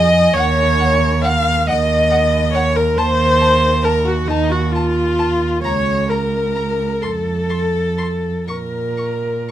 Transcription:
Already playing: F2 D#5 G#5
0.34 D#2 C#5 F#5
0.80 F#5
1.22 F5 F#5
1.67 D#2 D#5 F#5
2.11 F#5
2.53 C#5 F#5
2.76 A#4
2.97 D#2 C5 A5
3.41 A5
3.83 A#4 A5
4.05 F#4
4.28 D#2 D#4 A5
4.50 F#4
4.72 F4 A5
5.19 A5
5.63 C#2 C#5 A#5
6.09 A#4 A#5
6.55 A#5
7.02 F2 A4 C6
7.50 C6
7.98 C6
8.48 A#2 A#4 C#6
8.97 C#6

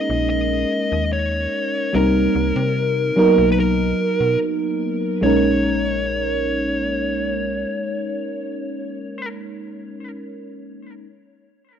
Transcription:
Already playing: G#3 A#3 C#4 D#4 A#4 D#5
0.10 A#1
0.29 D#5
0.92 D#2
1.13 C#5
1.93 C2 G3 A#3 C4 D#4 A#4
2.35 C2
2.56 C3
3.16 F#3 A#3 B3 D#4 A#4
3.38 B1
3.52 B4
3.60 A#4
4.20 B2
5.21 A#1 G#3 A#3 C#4 D#4 C#5
5.26 A#4

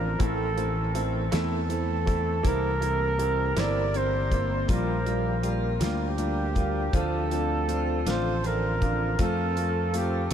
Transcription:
Already playing: A1 F3 C4 A#4
0.19 A1 E3 A3 C4 E4 A4, kick, closed hi-hat
0.56 E3 A3 C4 E4, closed hi-hat
0.94 A3 C4 E4, closed hi-hat
1.31 E2 E3 A3 C4 E4 A4, snare, closed hi-hat
1.68 A3 C4 E4, closed hi-hat
2.06 E3 A3 C4 E4, kick, closed hi-hat
2.43 C2 E3 A#3 C4 E4 G4, kick, closed hi-hat
2.47 A#4
2.80 A#3 C4 E4, closed hi-hat
3.18 A#3 C4 E4 G4, closed hi-hat
3.56 G1 A#3 C4 E4 D5, snare, closed hi-hat
3.93 A#3 C4 E4 C5, closed hi-hat
4.31 A#3 C4 E4, kick, closed hi-hat
4.68 A#1 F3 G3 A#3 F4 A#4, kick, closed hi-hat
5.05 G3 A#3 F4, closed hi-hat
5.42 G3 A#3 F4, closed hi-hat
5.79 D2 G3 A#3 F4, snare, closed hi-hat
5.84 G4
6.17 G3 A#3 D4 F4, closed hi-hat
6.55 G3 A#3 F4, kick, closed hi-hat
6.93 D2 D3 F3 A3 C4 D4 F4 A4, kick, closed hi-hat
7.31 A3 C4 D4 F4, closed hi-hat
7.68 C4 D4 F4, closed hi-hat
8.06 A1 A3 C4 D4 F4, snare, closed hi-hat
8.10 C5
8.44 C4 D4 F4 A#4, closed hi-hat
8.81 C4 D4 F4, kick, closed hi-hat
9.18 F2 A3 C4 F4 A4, kick, closed hi-hat
9.56 A3 C4 F4, closed hi-hat
9.94 A3 C4 F4 G4, closed hi-hat

